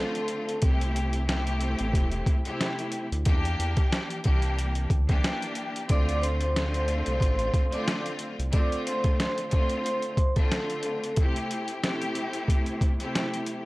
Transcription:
Already playing: string section D3 A3 C4 F4, vibraphone A4 A5
0.15 closed hi-hat
0.28 closed hi-hat
0.49 closed hi-hat
0.62 analog synth bass C2, string section C3 A3, kick, closed hi-hat
0.66 string section E4 G4
0.81 closed hi-hat
0.96 closed hi-hat
1.13 closed hi-hat
1.26 string section C3 A3 E4 G4, snare, closed hi-hat
1.47 closed hi-hat
1.61 closed hi-hat
1.79 analog synth bass A1, closed hi-hat
1.93 analog synth bass E1, kick, closed hi-hat
2.11 closed hi-hat
2.26 kick, closed hi-hat
2.45 string section C3 A3 E4 G4, closed hi-hat
2.61 snare, closed hi-hat
2.79 closed hi-hat
2.92 closed hi-hat
3.12 analog synth bass D2, closed hi-hat
3.25 analog synth bass E2, string section E3 A#3 D4 G4, kick, closed hi-hat
3.45 closed hi-hat
3.59 analog synth bass E2, closed hi-hat
3.77 kick, closed hi-hat
3.92 snare, closed hi-hat
4.10 closed hi-hat
4.24 analog synth bass C2, string section E3 A#3 D4 G4, kick, closed hi-hat
4.42 closed hi-hat
4.59 closed hi-hat
4.75 closed hi-hat
4.90 analog synth bass D2, kick, closed hi-hat
5.08 string section E3 A#3 D4 G4, kick, snare, closed hi-hat
5.24 snare, closed hi-hat
5.42 closed hi-hat
5.55 closed hi-hat
5.76 closed hi-hat
5.88 analog synth bass D2, string section D3 A3 C4 F4, vibraphone D5 D6, kick, closed hi-hat
6.09 closed hi-hat
6.22 vibraphone C5 C6, closed hi-hat
6.41 closed hi-hat
6.55 string section D3 A3 C4 F4, snare, closed hi-hat
6.74 closed hi-hat
6.88 closed hi-hat
7.06 analog synth bass C2, closed hi-hat
7.20 analog synth bass A1, vibraphone C5 C6, kick, closed hi-hat
7.39 closed hi-hat
7.54 kick, closed hi-hat
7.71 string section D3 A3 C4 F4, vibraphone D5 D6, closed hi-hat
7.88 snare, closed hi-hat
8.06 closed hi-hat
8.19 closed hi-hat
8.39 analog synth bass C2, closed hi-hat
8.52 string section D3 A3 C4 F4, vibraphone D5 D6, kick, closed hi-hat
8.72 closed hi-hat
8.87 vibraphone C5 C6, closed hi-hat
9.04 kick, closed hi-hat
9.20 snare, closed hi-hat
9.38 closed hi-hat
9.48 string section D3 A3 C4 F4, closed hi-hat
9.53 kick
9.69 closed hi-hat
9.84 vibraphone C5 C6, closed hi-hat
10.02 closed hi-hat
10.17 kick, closed hi-hat
10.36 string section D3 A3 C4 F4, vibraphone A4 A5, kick, closed hi-hat
10.52 snare, closed hi-hat
10.70 closed hi-hat
10.83 closed hi-hat
11.04 closed hi-hat
11.16 string section C3 A3, kick, closed hi-hat
11.21 string section E4 G4
11.36 closed hi-hat
11.51 closed hi-hat
11.68 closed hi-hat
11.81 string section C3 A3 E4 G4, snare, closed hi-hat
12.02 closed hi-hat
12.15 closed hi-hat
12.33 closed hi-hat
12.48 kick, closed hi-hat
12.66 closed hi-hat
12.81 kick, closed hi-hat
13.00 string section C3 A3 E4 G4, closed hi-hat
13.15 snare, closed hi-hat
13.34 closed hi-hat
13.46 closed hi-hat

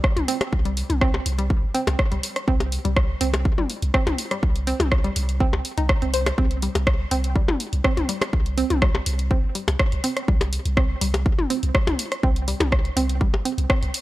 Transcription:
0.04 kick, cross-stick
0.17 sub bass C2, closed hi-hat, mid tom
0.28 synth arpeggio sound C4, open hi-hat
0.41 cross-stick, closed hi-hat, percussion blips
0.53 sub bass C2, kick
0.65 synth arpeggio sound G3, closed hi-hat
0.77 open hi-hat
0.90 sub bass C2, closed hi-hat, mid tom
1.01 synth arpeggio sound C4, kick, cross-stick
1.14 percussion blips
1.26 sub bass C2, open hi-hat
1.38 synth arpeggio sound G3, closed hi-hat
1.50 kick
1.63 sub bass G1
1.74 synth arpeggio sound C4, open hi-hat
1.87 sub bass C2, closed hi-hat, percussion blips
1.99 kick, cross-stick
2.12 sub bass C2, synth arpeggio sound G3, closed hi-hat
2.23 open hi-hat
2.36 cross-stick, closed hi-hat
2.48 sub bass C2, synth arpeggio sound C4, kick
2.60 closed hi-hat, percussion blips
2.72 open hi-hat
2.85 sub bass C2, synth arpeggio sound G3, closed hi-hat
2.96 kick, cross-stick
3.21 sub bass C2, synth arpeggio sound C4, open hi-hat
3.34 closed hi-hat, percussion blips
3.45 kick
3.58 sub bass G1, synth arpeggio sound G3, mid tom
3.70 open hi-hat
3.82 sub bass C2, closed hi-hat
3.94 synth arpeggio sound C4, kick, cross-stick
4.07 sub bass C2, closed hi-hat, mid tom, percussion blips
4.18 open hi-hat
4.31 synth arpeggio sound G3, cross-stick, closed hi-hat
4.43 sub bass C2, kick
4.56 closed hi-hat
4.67 synth arpeggio sound C4, open hi-hat
4.80 sub bass C2, closed hi-hat, mid tom, percussion blips
4.92 kick, cross-stick
5.04 synth arpeggio sound G3, closed hi-hat
5.16 sub bass C2, open hi-hat
5.29 closed hi-hat
5.40 synth arpeggio sound C4, kick
5.53 sub bass C2, percussion blips
5.65 open hi-hat
5.78 sub bass C2, synth arpeggio sound D#4, closed hi-hat
5.89 kick, cross-stick
6.02 sub bass C2, synth arpeggio sound C4, closed hi-hat
6.14 synth arpeggio sound C5, open hi-hat
6.26 cross-stick, closed hi-hat, percussion blips
6.38 sub bass C2, synth arpeggio sound C4, kick
6.51 closed hi-hat
6.62 synth arpeggio sound G3, open hi-hat
6.75 sub bass C2, closed hi-hat, percussion blips
6.87 kick, cross-stick
7.11 sub bass C2, synth arpeggio sound C4, open hi-hat
7.24 closed hi-hat
7.36 synth arpeggio sound G3, kick
7.48 sub bass G1, mid tom, percussion blips
7.60 open hi-hat
7.73 sub bass C2, closed hi-hat
7.84 synth arpeggio sound C4, kick, cross-stick
7.97 sub bass C2, closed hi-hat, mid tom
8.09 synth arpeggio sound G3, open hi-hat
8.22 cross-stick, closed hi-hat, percussion blips
8.33 sub bass C2, kick
8.46 closed hi-hat
8.58 synth arpeggio sound C4, open hi-hat
8.70 sub bass C2, closed hi-hat, mid tom
8.82 synth arpeggio sound G3, kick, cross-stick
8.95 percussion blips
9.06 sub bass C2, open hi-hat
9.19 closed hi-hat
9.31 synth arpeggio sound C4, kick
9.43 sub bass G1
9.55 synth arpeggio sound G3, open hi-hat
9.68 sub bass C2, closed hi-hat, percussion blips
9.79 kick, cross-stick
9.92 sub bass C2, closed hi-hat
10.04 synth arpeggio sound C4, open hi-hat
10.17 cross-stick, closed hi-hat
10.28 sub bass C2, synth arpeggio sound G3, kick
10.41 closed hi-hat, percussion blips
10.53 open hi-hat
10.65 sub bass C2, closed hi-hat
10.77 synth arpeggio sound C4, kick, cross-stick
11.01 sub bass C2, synth arpeggio sound G3, open hi-hat
11.14 closed hi-hat, percussion blips
11.26 kick
11.39 sub bass G1, mid tom
11.50 synth arpeggio sound C4, open hi-hat
11.63 sub bass C2, closed hi-hat
11.75 synth arpeggio sound G3, kick, cross-stick
11.87 sub bass C2, closed hi-hat, mid tom, percussion blips
11.99 open hi-hat
12.12 cross-stick, closed hi-hat
12.23 sub bass C2, synth arpeggio sound C4, kick
12.36 closed hi-hat
12.48 synth arpeggio sound G3, open hi-hat
12.60 sub bass C2, closed hi-hat, mid tom, percussion blips
12.72 kick, cross-stick
12.85 closed hi-hat
12.96 sub bass C2, synth arpeggio sound C4, open hi-hat
13.09 closed hi-hat
13.21 synth arpeggio sound G3, kick
13.34 sub bass G1, percussion blips
13.45 synth arpeggio sound C4, open hi-hat
13.58 sub bass C2, closed hi-hat
13.70 synth arpeggio sound C4, kick, cross-stick
13.82 sub bass C2, closed hi-hat
13.94 open hi-hat

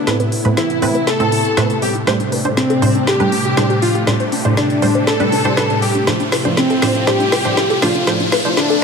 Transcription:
Already playing: supersaw synth A2 C3 A3 B3 E4, riser
0.07 synth pluck A2 A3 C4 B4, snare, closed hi-hat
0.20 synth arpeggio sound B4, closed hi-hat
0.32 synth arpeggio sound E4, open hi-hat
0.45 synth pluck A2 A3 C4 B4, synth arpeggio sound E4, closed hi-hat
0.57 violin section E4, digital synth lead E4, synth arpeggio sound C5, snare, closed hi-hat
0.70 synth arpeggio sound E4, closed hi-hat
0.82 synth pluck A2 A3 C4 B4, synth arpeggio sound E4, open hi-hat
0.95 synth arpeggio sound B4, closed hi-hat
1.07 violin section A4, digital synth lead A4, snare, closed hi-hat
1.20 synth pluck A2 A3 C4 A4, synth arpeggio sound E4, closed hi-hat
1.32 synth arpeggio sound E4, open hi-hat
1.45 closed hi-hat
1.57 synth pluck A2 A3 C4 B4, synth arpeggio sound E4, snare, closed hi-hat
1.70 synth arpeggio sound E4, closed hi-hat
1.82 violin section G4, digital synth lead G4, synth arpeggio sound E5, open hi-hat
1.95 synth arpeggio sound E4, closed hi-hat
2.07 synth pluck A2 G3 D4 C5, supersaw synth D4 G4, synth arpeggio sound C5, snare, closed hi-hat
2.20 synth arpeggio sound D4, closed hi-hat
2.32 synth arpeggio sound B4, open hi-hat
2.45 synth pluck A2 G3 D4 C5, synth arpeggio sound D4, closed hi-hat
2.57 violin section C4, digital synth lead C4, synth arpeggio sound D4, snare, closed hi-hat
2.70 synth arpeggio sound A4, closed hi-hat
2.82 synth pluck A2 G3 D4 C5, synth arpeggio sound D4, open hi-hat
2.95 synth arpeggio sound D4, closed hi-hat
3.07 synth arpeggio sound G4, violin section G4, digital synth lead G4, snare, closed hi-hat
3.20 synth pluck A2 G3 D4 B4, synth arpeggio sound D4, closed hi-hat
3.32 synth arpeggio sound D4, open hi-hat
3.45 synth arpeggio sound G4, closed hi-hat
3.57 synth pluck A2 G3 D4 C5, synth arpeggio sound D4, snare, closed hi-hat
3.70 synth arpeggio sound G4, closed hi-hat
3.82 synth arpeggio sound D4, violin section F4, digital synth lead F4, open hi-hat
3.95 synth arpeggio sound G4, closed hi-hat
4.07 synth pluck A2 G3 D4 C5, synth arpeggio sound D4, snare, closed hi-hat
4.20 synth arpeggio sound C5, closed hi-hat
4.32 synth arpeggio sound D4, open hi-hat
4.45 synth pluck A2 G3 D4 C5, synth arpeggio sound D4, closed hi-hat
4.57 violin section D4, digital synth lead D4, synth arpeggio sound D5, snare, closed hi-hat
4.70 synth arpeggio sound D4, closed hi-hat
4.82 synth pluck A2 G3 D4 C5, synth arpeggio sound D4, open hi-hat
4.95 synth arpeggio sound C5, closed hi-hat
5.07 synth arpeggio sound D4, digital synth lead A4, violin section A4, snare, closed hi-hat
5.20 synth pluck A2 G3 D4 B4, synth arpeggio sound D4, closed hi-hat
5.32 synth arpeggio sound D4, open hi-hat
5.45 synth pluck A2 G3 D4 C5, closed hi-hat
5.57 synth pluck A2 G3 D4 B4, synth arpeggio sound D4, snare, closed hi-hat
5.70 synth arpeggio sound D4, closed hi-hat
5.82 violin section G4, digital synth lead G4, synth arpeggio sound A4, open hi-hat
5.95 synth arpeggio sound D4, closed hi-hat
6.07 synth pluck A2 F3 D4 C5, supersaw synth E4 F4, synth arpeggio sound C5, snare, closed hi-hat
6.20 synth arpeggio sound D4, closed hi-hat
6.32 synth arpeggio sound B4, snare, open hi-hat
6.45 synth pluck A2 F3 D4 C5, synth arpeggio sound D4, closed hi-hat
6.57 violin section C4, digital synth lead C4, synth arpeggio sound D4, snare, closed hi-hat
6.70 synth arpeggio sound A4, closed hi-hat
6.82 synth pluck A2 F3 D4 C5, synth arpeggio sound D4, snare, open hi-hat
6.95 synth arpeggio sound D4, closed hi-hat
7.07 synth pluck A2 F3 D4 C5, violin section G4, digital synth lead G4, synth arpeggio sound C5, snare, closed hi-hat
7.20 synth arpeggio sound D4, closed hi-hat
7.32 synth arpeggio sound B4, snare, open hi-hat
7.45 synth pluck A2 F3 D4 C5, synth arpeggio sound D4, closed hi-hat
7.57 synth arpeggio sound D4, snare, closed hi-hat
7.70 synth arpeggio sound A4, closed hi-hat
7.82 synth pluck A2 F3 D4 C5, synth arpeggio sound D4, violin section F4, digital synth lead F4, snare, open hi-hat
7.95 synth arpeggio sound D4, closed hi-hat
8.07 synth pluck A2 F3 D4 C5, synth arpeggio sound C5, snare, closed hi-hat
8.20 synth arpeggio sound D4, closed hi-hat
8.32 synth arpeggio sound B4, snare, open hi-hat
8.45 synth pluck A2 F3 D4 C5, synth arpeggio sound D4, closed hi-hat
8.57 synth arpeggio sound D4, violin section D4, digital synth lead D4, snare, closed hi-hat
8.70 synth arpeggio sound A4, closed hi-hat

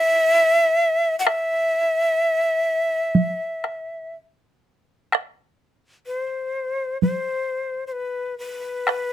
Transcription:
Already playing: shakuhachi E5
1.19 shakuhachi F#5
1.26 shakuhachi E5, taiko rim
3.15 taiko high
3.64 taiko rim
5.13 taiko rim
6.07 shakuhachi C5
7.02 shakuhachi C5, taiko high
7.87 shakuhachi C5
7.92 shakuhachi B4
8.38 shakuhachi B4
8.88 taiko rim

